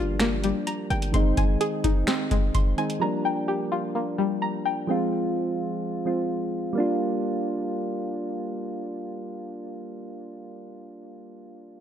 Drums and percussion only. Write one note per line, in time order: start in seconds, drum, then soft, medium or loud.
0.20 finger snap medium
0.20 snare loud
0.20 closed hi-hat medium
0.44 closed hi-hat medium
0.67 closed hi-hat medium
0.90 closed hi-hat soft
1.02 closed hi-hat medium
1.14 kick loud
1.14 closed hi-hat medium
1.37 kick medium
1.37 closed hi-hat medium
1.61 closed hi-hat medium
1.84 kick medium
1.84 closed hi-hat medium
2.07 finger snap medium
2.07 snare loud
2.07 closed hi-hat medium
2.31 kick medium
2.31 closed hi-hat medium
2.55 kick loud
2.55 closed hi-hat medium
2.78 closed hi-hat soft
2.90 closed hi-hat medium